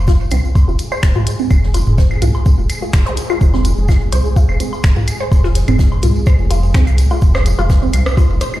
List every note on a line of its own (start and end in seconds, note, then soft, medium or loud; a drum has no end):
0.00 0.27 F1 medium
0.00 8.60 G#3 medium
0.00 7.25 G#4 medium
0.07 0.13 F4 loud
0.07 kick loud
0.07 snare loud
0.07 tambourine medium
0.07 shaker medium
0.21 tambourine soft
0.31 0.41 C2 medium
0.31 0.37 C4 medium
0.31 closed hi-hat medium
0.31 tambourine loud
0.31 high woodblock medium
0.31 shaker medium
0.45 tambourine soft
0.55 kick loud
0.55 tambourine soft
0.55 low woodblock soft
0.55 shaker medium
0.68 0.77 F1 medium
0.68 0.71 F4 medium
0.68 tambourine soft
0.79 closed hi-hat medium
0.79 tambourine medium
0.79 shaker medium
0.92 0.99 C5 loud
0.92 tambourine soft
0.92 high woodblock medium
1.03 1.13 F1 loud
1.03 finger snap loud
1.03 kick loud
1.03 snare loud
1.03 tambourine soft
1.03 shaker medium
1.15 1.21 F4 loud
1.15 mid tom medium
1.15 tambourine soft
1.15 low woodblock soft
1.27 closed hi-hat medium
1.27 tambourine medium
1.27 shaker medium
1.39 1.44 C4 medium
1.39 tambourine soft
1.50 1.82 F1 medium
1.50 kick loud
1.50 tambourine soft
1.50 high woodblock medium
1.50 shaker medium
1.63 snare soft
1.63 tambourine soft
1.74 1.78 F4 medium
1.74 snare soft
1.74 closed hi-hat medium
1.74 tambourine medium
1.74 low woodblock soft
1.74 shaker medium
1.87 2.18 F1 medium
1.87 mid tom medium
1.87 tambourine soft
1.98 2.07 C5 loud
1.98 kick loud
1.98 snare loud
1.98 tambourine medium
1.98 shaker medium
2.11 tambourine soft
2.11 high woodblock medium
2.22 2.32 C2 medium
2.22 2.28 F4 loud
2.22 closed hi-hat medium
2.22 mid tom medium
2.22 tambourine loud
2.22 shaker medium
2.35 tambourine soft
2.35 low woodblock soft
2.46 2.52 C4 medium
2.46 kick loud
2.46 tambourine medium
2.46 shaker medium
2.59 2.67 F1 medium
2.59 tambourine soft
2.69 closed hi-hat medium
2.69 tambourine loud
2.69 high woodblock medium
2.69 shaker medium
2.82 2.85 F4 medium
2.82 tambourine soft
2.93 3.03 F1 loud
2.93 finger snap loud
2.93 kick loud
2.93 snare loud
2.93 tambourine medium
2.93 low woodblock soft
2.93 shaker medium
3.06 3.14 C5 loud
3.06 closed hi-hat soft
3.06 tambourine soft
3.06 zap medium
3.17 snare medium
3.17 closed hi-hat medium
3.17 tambourine medium
3.17 shaker medium
3.30 3.35 F4 loud
3.30 tambourine soft
3.30 high woodblock medium
3.41 3.73 F1 loud
3.41 kick loud
3.41 tambourine medium
3.41 shaker medium
3.53 3.59 C4 medium
3.53 snare medium
3.53 tambourine soft
3.53 low woodblock soft
3.65 closed hi-hat medium
3.65 tambourine medium
3.65 shaker medium
3.78 4.08 F1 medium
3.78 tambourine soft
3.88 3.92 F4 medium
3.88 kick loud
3.88 snare loud
3.88 tambourine medium
3.88 high woodblock medium
3.88 shaker medium
4.01 tambourine soft
4.12 4.22 C2 medium
4.12 4.21 C5 loud
4.12 closed hi-hat loud
4.12 tambourine medium
4.12 low woodblock soft
4.12 shaker medium
4.25 tambourine soft
4.36 4.42 F4 loud
4.36 kick loud
4.36 tambourine medium
4.36 shaker medium
4.49 4.58 F1 medium
4.49 tambourine soft
4.49 high woodblock medium
4.60 4.66 C4 medium
4.60 closed hi-hat medium
4.60 tambourine medium
4.60 shaker medium
4.73 tambourine soft
4.73 low woodblock soft
4.83 4.94 F1 loud
4.83 finger snap loud
4.83 kick loud
4.83 snare loud
4.83 tambourine medium
4.83 shaker medium
4.96 5.00 F4 medium
4.96 mid tom medium
4.96 tambourine soft
5.08 closed hi-hat medium
5.08 tambourine loud
5.08 high woodblock medium
5.08 shaker medium
5.20 5.28 C5 loud
5.20 tambourine soft
5.32 5.63 F1 loud
5.32 kick loud
5.32 tambourine medium
5.32 low woodblock soft
5.32 shaker medium
5.44 5.49 F4 loud
5.44 snare soft
5.44 tambourine soft
5.55 snare soft
5.55 closed hi-hat medium
5.55 tambourine loud
5.55 shaker medium
5.68 5.99 F1 medium
5.68 5.73 C4 medium
5.68 closed hi-hat soft
5.68 mid tom medium
5.68 tambourine soft
5.68 high woodblock medium
5.79 kick loud
5.79 snare loud
5.79 tambourine medium
5.79 shaker medium
5.92 tambourine soft
5.92 low woodblock soft
6.03 6.13 C2 medium
6.03 6.06 F4 medium
6.03 closed hi-hat medium
6.03 mid tom medium
6.03 tambourine loud
6.03 shaker medium
6.16 tambourine soft
6.26 6.35 C5 loud
6.26 kick loud
6.26 tambourine medium
6.26 high woodblock medium
6.26 shaker medium
6.39 6.76 F1 loud
6.39 tambourine soft
6.50 6.56 F4 loud
6.50 closed hi-hat medium
6.50 tambourine medium
6.50 low woodblock soft
6.50 shaker medium
6.63 tambourine soft
6.74 7.06 C2 medium
6.74 6.80 C4 medium
6.74 finger snap loud
6.74 kick loud
6.74 snare loud
6.74 tambourine soft
6.74 shaker medium
6.87 closed hi-hat soft
6.87 tambourine soft
6.87 high woodblock medium
6.98 snare medium
6.98 closed hi-hat medium
6.98 tambourine medium
6.98 shaker medium
7.11 7.14 F4 medium
7.11 tambourine soft
7.11 low woodblock soft
7.21 7.54 F1 loud
7.21 8.60 D#4 medium
7.21 kick loud
7.21 tambourine soft
7.21 shaker medium
7.34 7.42 C5 loud
7.34 cross-stick medium
7.34 snare soft
7.34 tambourine soft
7.34 high woodblock medium
7.46 closed hi-hat medium
7.46 tambourine medium
7.46 shaker medium
7.59 7.89 F1 medium
7.59 7.64 F4 loud
7.59 tambourine soft
7.59 low woodblock soft
7.70 kick loud
7.70 cross-stick soft
7.70 snare loud
7.70 tambourine soft
7.70 shaker medium
7.82 7.87 C4 medium
7.82 tambourine soft
7.93 8.03 C2 medium
7.93 closed hi-hat medium
7.93 tambourine medium
7.93 high woodblock medium
7.93 shaker medium
8.06 cross-stick medium
8.06 tambourine soft
8.17 8.21 F4 medium
8.17 kick loud
8.17 tambourine soft
8.17 low woodblock soft
8.17 shaker medium
8.30 8.39 F1 loud
8.30 tambourine soft
8.40 8.50 C5 loud
8.40 cross-stick soft
8.40 closed hi-hat medium
8.40 tambourine medium
8.40 shaker medium
8.54 tambourine soft
8.54 high woodblock medium